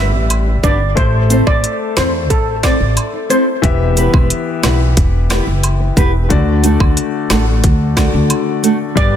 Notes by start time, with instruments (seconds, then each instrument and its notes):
Already playing: upright bass G1, grand piano G3 G4 B4 D5, nylon-string guitar D4 G4, steel pan E5
0.00 nylon-string guitar B4
0.14 upright bass A1
0.30 closed hi-hat, high woodblock
0.46 muted nylon-string guitar stroke
0.63 upright bass G1, nylon-string guitar B3 D4 G4 B4, steel pan D5, kick, closed hi-hat, cabasa
0.95 upright bass A1, grand piano A3 A4 C5 E5, steel pan C5, kick, closed hi-hat
1.30 nylon-string guitar C4 E4 A4 C5, closed hi-hat, cabasa
1.47 upright bass A1, steel pan D5, kick, high woodblock
1.64 closed hi-hat
1.96 upright bass E2, nylon-string guitar C4 E4 A4 C5, steel pan C5, cross-stick, snare, closed hi-hat, cabasa, high woodblock
2.30 upright bass A1, steel pan A4, kick, closed hi-hat
2.63 nylon-string guitar C4 E4 A4 C5, steel pan D5, kick, cross-stick, snare, closed hi-hat, cabasa, high woodblock
2.80 upright bass A1
2.97 closed hi-hat, high woodblock
3.13 muted nylon-string guitar stroke
3.29 nylon-string guitar C4 E4 A4 C5, steel pan C5, closed hi-hat, cabasa
3.62 upright bass E1, grand piano E3 B3 G4 E5, kick, closed hi-hat
3.96 nylon-string guitar B3 E4 G4 B4, closed hi-hat, cabasa
4.14 upright bass E1, kick, high woodblock
4.30 closed hi-hat
4.63 upright bass B1, nylon-string guitar B3 E4 G4 B4, cross-stick, snare, closed hi-hat, cabasa, high woodblock
4.97 upright bass E1, kick, closed hi-hat
5.29 nylon-string guitar B3 E4 G4 B4, cross-stick, snare, closed hi-hat, cabasa, high woodblock
5.47 upright bass F#1
5.63 closed hi-hat, high woodblock
5.80 muted nylon-string guitar stroke
5.96 upright bass E1, nylon-string guitar B3 E4 G4 B4, kick, closed hi-hat, cabasa
6.29 upright bass D2, grand piano D3 A3 F#4 D5, kick, closed hi-hat
6.63 nylon-string guitar A3 D4 F#4 A4, closed hi-hat, cabasa
6.80 upright bass D2, kick, high woodblock
6.97 closed hi-hat
7.30 upright bass A1, nylon-string guitar A3 D4 F#4 A4, cross-stick, snare, closed hi-hat, cabasa, high woodblock
7.64 upright bass D2, kick, closed hi-hat
7.96 grand piano D3 A3 F#4 D5, nylon-string guitar A3 D4 F#4 A4, kick, cross-stick, snare, closed hi-hat, cabasa, high woodblock
8.14 upright bass D2
8.30 closed hi-hat, high woodblock
8.46 muted nylon-string guitar stroke
8.63 nylon-string guitar A3 D4 F#4 A4, closed hi-hat, cabasa
8.95 upright bass G1, grand piano G3 G4 B4 D5, steel pan D5, kick, closed hi-hat